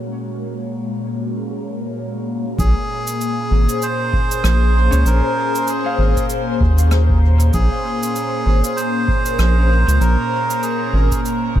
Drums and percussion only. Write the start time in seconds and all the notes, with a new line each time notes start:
2.59 kick, cabasa
3.07 cabasa
3.21 cabasa
3.69 cabasa
3.82 cabasa
4.13 kick
4.31 cabasa
4.44 cross-stick, cabasa
4.93 cabasa
5.06 cabasa
5.55 cabasa
5.67 cabasa
6.17 kick, cabasa
6.30 cabasa
6.61 kick
6.78 cabasa
6.91 cross-stick, cabasa
7.10 kick
7.40 cabasa
7.53 kick, cabasa
8.03 cabasa
8.16 cabasa
8.64 cabasa
8.78 cabasa
9.08 kick
9.26 cabasa
9.39 cross-stick, cabasa
9.89 cabasa
10.01 cabasa
10.50 cabasa
10.63 cabasa
11.12 kick, cabasa
11.25 cabasa
11.56 kick